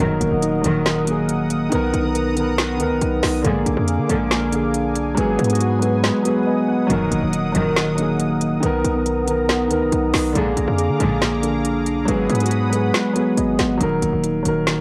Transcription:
Already playing: F#3
0.00 D#1 D#3 D#4 A#4 D#5 F#5 D#6
0.21 D#1 A#3, closed hi-hat
0.32 D#1
0.42 D#4, closed hi-hat
0.61 D#1 A#1 F#2 D#3 F#3 D#4, closed hi-hat
0.67 A#4
0.86 D#3, snare, closed hi-hat
1.05 F#3 A#3 D#4, closed hi-hat
1.10 G#4
1.28 A#3, closed hi-hat
1.50 A#3, closed hi-hat
1.69 B1 D#3 B3 A#5, closed hi-hat
1.75 A#4
1.94 B1 D#4, closed hi-hat
2.02 D#3 B3
2.07 A#4
2.15 A#4, closed hi-hat
2.34 D#3 B3, closed hi-hat
2.40 A#4
2.58 B3, snare, closed hi-hat
2.77 D2 D#3 B3 D#4, closed hi-hat
2.82 A#4
2.91 B1
3.02 B1 D#4, closed hi-hat
3.23 B1 D#4, snare, open hi-hat
3.42 A#1 G#2 D3 A#3 A#4 F5 G#5 D6, closed hi-hat
3.47 G#4
3.66 A#1 D4, closed hi-hat
3.77 F2
3.88 G#4, closed hi-hat
3.99 D3
4.07 A#1 G#2 D3 A#3, closed hi-hat
4.12 G#4
4.31 A#3, snare, closed hi-hat
4.50 D3 A#3 D4, closed hi-hat
4.55 G#4
4.74 D4, closed hi-hat
4.96 B1 D4, closed hi-hat
5.15 G#1 F#3 G#3 B3 B4 F#5 D#6, closed hi-hat
5.20 G#4
5.39 G#2 B3, closed hi-hat
5.44 F#3, closed hi-hat
5.50 B3 F#4, closed hi-hat
5.55 closed hi-hat
5.60 F#4, closed hi-hat
5.79 F#3 G#3 B3, closed hi-hat
5.85 G#4
6.04 G#3, snare, closed hi-hat
6.23 F#3 B3 B4, closed hi-hat
6.28 G#4
6.46 B3 D#5
6.68 B3 F#5
6.87 D#1 A#1 F#2 D#3 F#3 D#4 A#4 D#5, closed hi-hat
6.93 A#4
7.11 D#1 A#3, closed hi-hat
7.22 D#1
7.33 D#4, closed hi-hat
7.52 D#1 A#1 F#2 D#3 F#3 D#4, closed hi-hat
7.58 A#4
7.76 D#3, snare, closed hi-hat
7.95 F#3 A#3 D#4, closed hi-hat
8.01 G#4
8.19 A#3, closed hi-hat
8.41 A#3, closed hi-hat
8.60 B1 D#3 B3 A#5, closed hi-hat
8.66 A#4
8.84 B1 D#4, closed hi-hat
8.92 D#3 B3
8.98 A#4
9.06 A#4, closed hi-hat
9.25 D#3 B3, closed hi-hat
9.31 A#4
9.49 B3, snare, closed hi-hat
9.67 D2 D#3 B3 D#4, closed hi-hat
9.73 A#4
9.81 B1
9.92 B1 D#4, closed hi-hat
10.14 B1 D#4, snare, open hi-hat
10.33 A#1 G#2 D3 A#3 G#4 F5 A#5 D6, closed hi-hat
10.38 G#4
10.57 A#1 D4, closed hi-hat
10.68 F2
10.78 G#4, closed hi-hat
10.89 D3
10.97 A#1 G#2 D3 A#3, closed hi-hat
11.03 G#4
11.21 A#3, snare, closed hi-hat
11.40 D3 A#3 D4, closed hi-hat
11.46 G#4
11.65 D4, closed hi-hat
11.86 B1 D4, closed hi-hat
12.05 G#1 F#3 G#3 B3 F#5 B5 D#6, closed hi-hat
12.11 G#4
12.29 G#2 B3, closed hi-hat
12.35 F#3, closed hi-hat
12.40 B3 F#4, closed hi-hat
12.46 closed hi-hat
12.51 F#4, closed hi-hat
12.70 F#3 G#3 B3, closed hi-hat
12.75 G#4
12.94 G#3, snare, closed hi-hat
13.13 F#3 B3 B4, closed hi-hat
13.19 G#4
13.37 G#1 B3 D#5, closed hi-hat
13.59 G#1 B3 F#5, snare, closed hi-hat
13.78 D#1 D#3 F#3 D#4, closed hi-hat
13.83 A#4
14.02 D#1 A#3, closed hi-hat
14.13 D#1
14.24 D#4, closed hi-hat
14.43 D#1 D#3 F#3 D#4, closed hi-hat
14.48 A#4
14.67 D#3, snare, closed hi-hat

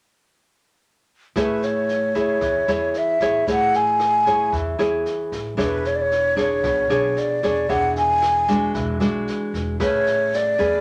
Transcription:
1.36 A1 A3 E4 G#4 B4 C#5, kick, cross-stick, snare
1.62 C#5, snare
1.89 snare
2.15 E4 G#4 C#5, kick, snare
2.41 E2 E3, kick, cross-stick, snare
2.67 E2 E4 G#4 C#5, snare
2.94 E5, snare
3.20 A1 E4 G#4 C#5, kick, cross-stick, snare
3.47 A1 A3 E4 G#4 C#5 F#5, kick, snare
3.73 G#5, snare
4.00 cross-stick, snare
4.26 E4 G#4 C#5, kick, snare
4.52 E2 E3, kick, snare
4.79 E2 E4 G#4 C#5, cross-stick, snare
5.06 snare
5.32 A1, kick, snare
5.57 E1 E3 D4 G#4 C#5, kick, cross-stick, snare
5.62 B4
5.85 C#5, snare
5.96 D5
6.02 C#5
6.11 snare
6.36 D4 G#4 C#5, kick, snare
6.63 B1 B2, kick, cross-stick, snare
6.89 B1 D4 G#4 C#5, snare
7.17 D5, snare
7.43 E1 D4 G#4 C#5, kick, cross-stick, snare
7.69 E1 E3 D4 G#4 C#5 F#5, kick, snare
7.96 G#5, snare
8.22 cross-stick, snare
8.48 G#3 D4 F#4, kick, snare
8.74 E1 E3, kick, snare
9.00 B1 G#3 D4 F#4, cross-stick, snare
9.27 snare
9.54 E1, kick, snare
9.80 A1 A3 C#4 G#4 B4 C#5, kick, cross-stick, snare
10.06 snare
10.33 D5, snare
10.58 E2 C#4 G#4 B4, kick, snare

